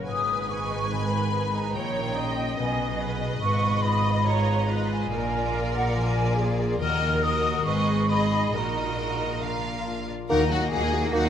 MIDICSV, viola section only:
0, 0, Header, 1, 2, 480
1, 0, Start_track
1, 0, Tempo, 419580
1, 98, Time_signature, 4, 2, 24, 8
1, 7779, Tempo, 438276
1, 11619, Tempo, 410959
1, 12769, End_track
2, 0, Start_track
2, 0, Title_t, "Viola section"
2, 0, Program_c, 0, 48
2, 95, Note_on_c, 0, 71, 54
2, 1974, Note_off_c, 0, 71, 0
2, 2011, Note_on_c, 0, 73, 58
2, 2477, Note_on_c, 0, 75, 58
2, 2480, Note_off_c, 0, 73, 0
2, 3435, Note_on_c, 0, 71, 55
2, 3438, Note_off_c, 0, 75, 0
2, 3894, Note_off_c, 0, 71, 0
2, 3908, Note_on_c, 0, 71, 59
2, 4380, Note_off_c, 0, 71, 0
2, 4402, Note_on_c, 0, 75, 64
2, 4878, Note_off_c, 0, 75, 0
2, 4882, Note_on_c, 0, 73, 66
2, 5353, Note_off_c, 0, 73, 0
2, 5366, Note_on_c, 0, 71, 60
2, 5841, Note_off_c, 0, 71, 0
2, 5859, Note_on_c, 0, 70, 71
2, 7274, Note_off_c, 0, 70, 0
2, 7294, Note_on_c, 0, 68, 61
2, 7780, Note_off_c, 0, 68, 0
2, 7782, Note_on_c, 0, 70, 68
2, 8710, Note_off_c, 0, 70, 0
2, 8730, Note_on_c, 0, 71, 59
2, 9194, Note_off_c, 0, 71, 0
2, 9214, Note_on_c, 0, 75, 62
2, 9692, Note_off_c, 0, 75, 0
2, 9703, Note_on_c, 0, 70, 56
2, 11393, Note_off_c, 0, 70, 0
2, 11613, Note_on_c, 0, 66, 51
2, 11615, Note_on_c, 0, 54, 50
2, 11729, Note_off_c, 0, 66, 0
2, 11730, Note_off_c, 0, 54, 0
2, 11736, Note_on_c, 0, 58, 45
2, 11736, Note_on_c, 0, 63, 45
2, 11860, Note_off_c, 0, 58, 0
2, 11860, Note_off_c, 0, 63, 0
2, 11861, Note_on_c, 0, 54, 46
2, 11864, Note_on_c, 0, 66, 45
2, 11983, Note_off_c, 0, 54, 0
2, 11983, Note_on_c, 0, 63, 45
2, 11985, Note_off_c, 0, 66, 0
2, 11985, Note_on_c, 0, 58, 43
2, 12104, Note_off_c, 0, 63, 0
2, 12105, Note_off_c, 0, 58, 0
2, 12109, Note_on_c, 0, 54, 48
2, 12113, Note_on_c, 0, 66, 49
2, 12218, Note_off_c, 0, 54, 0
2, 12220, Note_off_c, 0, 66, 0
2, 12232, Note_on_c, 0, 63, 44
2, 12238, Note_on_c, 0, 58, 45
2, 12343, Note_on_c, 0, 54, 47
2, 12347, Note_off_c, 0, 63, 0
2, 12350, Note_off_c, 0, 58, 0
2, 12350, Note_on_c, 0, 66, 48
2, 12462, Note_off_c, 0, 54, 0
2, 12465, Note_off_c, 0, 66, 0
2, 12483, Note_on_c, 0, 63, 47
2, 12484, Note_on_c, 0, 58, 46
2, 12592, Note_off_c, 0, 58, 0
2, 12592, Note_off_c, 0, 63, 0
2, 12597, Note_on_c, 0, 54, 50
2, 12600, Note_on_c, 0, 66, 48
2, 12701, Note_off_c, 0, 54, 0
2, 12702, Note_off_c, 0, 66, 0
2, 12719, Note_on_c, 0, 58, 44
2, 12719, Note_on_c, 0, 63, 44
2, 12769, Note_off_c, 0, 58, 0
2, 12769, Note_off_c, 0, 63, 0
2, 12769, End_track
0, 0, End_of_file